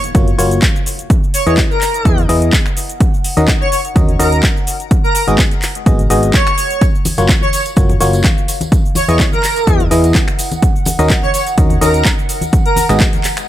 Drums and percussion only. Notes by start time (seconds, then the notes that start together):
0.04 closed hi-hat, shaker
0.15 kick, closed hi-hat, shaker
0.28 closed hi-hat, shaker
0.39 open hi-hat, shaker
0.51 closed hi-hat, shaker
0.62 kick, clap, closed hi-hat, shaker
0.76 shaker
0.86 open hi-hat, shaker
0.99 closed hi-hat, shaker
1.10 kick, closed hi-hat, shaker
1.24 shaker
1.34 open hi-hat, shaker
1.47 closed hi-hat, shaker
1.57 kick, clap, closed hi-hat, shaker
1.71 shaker
1.81 clap, open hi-hat, shaker
1.94 closed hi-hat, shaker
2.05 kick, closed hi-hat, shaker
2.18 closed hi-hat, shaker
2.29 open hi-hat, shaker
2.42 closed hi-hat, shaker
2.53 kick, clap, closed hi-hat, shaker
2.66 finger snap, shaker
2.77 open hi-hat, shaker
2.89 closed hi-hat, shaker
3.00 kick, closed hi-hat, shaker
3.14 shaker
3.24 open hi-hat, shaker
3.37 closed hi-hat, shaker
3.48 kick, clap, closed hi-hat, shaker
3.62 shaker
3.72 open hi-hat, shaker
3.85 closed hi-hat, shaker
3.96 kick, closed hi-hat, shaker
4.09 closed hi-hat, shaker
4.20 open hi-hat, shaker
4.32 closed hi-hat, shaker
4.43 kick, clap, closed hi-hat, shaker
4.57 shaker
4.67 open hi-hat, shaker
4.80 closed hi-hat, shaker
4.91 kick, closed hi-hat, shaker
5.05 shaker
5.15 open hi-hat, shaker
5.28 closed hi-hat, shaker
5.38 kick, clap, closed hi-hat, shaker
5.51 closed hi-hat, shaker
5.62 clap, open hi-hat, shaker
5.75 closed hi-hat, shaker
5.86 kick, closed hi-hat, shaker
5.99 closed hi-hat, shaker
6.10 open hi-hat, shaker
6.23 closed hi-hat, shaker
6.34 kick, clap, closed hi-hat, shaker
6.47 finger snap, closed hi-hat, shaker
6.58 open hi-hat, shaker
6.70 closed hi-hat, shaker
6.81 kick, closed hi-hat, tambourine, shaker
6.95 shaker
7.05 open hi-hat, tambourine, high conga, shaker
7.17 closed hi-hat, tambourine, shaker
7.29 kick, clap, closed hi-hat, shaker
7.41 high conga, shaker
7.53 open hi-hat, tambourine, shaker
7.65 closed hi-hat, tambourine, shaker
7.76 kick, closed hi-hat, tambourine, shaker
7.89 closed hi-hat, high conga, shaker
8.00 open hi-hat, tambourine, shaker
8.13 closed hi-hat, tambourine, shaker
8.24 kick, clap, closed hi-hat, tambourine, high conga, shaker
8.38 shaker
8.48 open hi-hat, tambourine, shaker
8.61 closed hi-hat, tambourine, high conga, shaker
8.72 kick, closed hi-hat, tambourine, shaker
8.86 shaker
8.95 open hi-hat, tambourine, high conga, shaker
9.08 closed hi-hat, tambourine, shaker
9.19 kick, clap, closed hi-hat, tambourine, shaker
9.32 high conga, shaker
9.43 clap, open hi-hat, tambourine, shaker
9.56 closed hi-hat, tambourine, shaker
9.67 kick, closed hi-hat, tambourine, shaker
9.80 closed hi-hat, high conga, shaker
9.91 open hi-hat, tambourine, shaker
10.04 closed hi-hat, tambourine, shaker
10.15 kick, clap, closed hi-hat, tambourine, high conga, shaker
10.28 finger snap, shaker
10.39 open hi-hat, tambourine, shaker
10.51 closed hi-hat, tambourine, high conga, shaker
10.62 kick, closed hi-hat, tambourine, shaker
10.76 shaker
10.85 open hi-hat, tambourine, high conga, shaker
10.99 closed hi-hat, tambourine, shaker
11.10 kick, clap, closed hi-hat, shaker
11.22 high conga, shaker
11.34 open hi-hat, tambourine, shaker
11.47 closed hi-hat, tambourine, shaker
11.58 kick, closed hi-hat, tambourine, shaker
11.70 closed hi-hat, high conga, shaker
11.81 open hi-hat, tambourine, shaker
11.93 closed hi-hat, tambourine, shaker
12.05 kick, clap, closed hi-hat, tambourine, high conga, shaker
12.19 shaker
12.29 open hi-hat, tambourine, shaker
12.41 closed hi-hat, tambourine, high conga, shaker
12.53 kick, closed hi-hat, tambourine, shaker
12.66 closed hi-hat, shaker
12.76 open hi-hat, tambourine, high conga, shaker
12.89 finger snap, closed hi-hat, tambourine, shaker
13.00 kick, clap, closed hi-hat, shaker
13.13 closed hi-hat, high conga, shaker
13.24 clap, open hi-hat, tambourine, shaker
13.37 finger snap, closed hi-hat, tambourine, shaker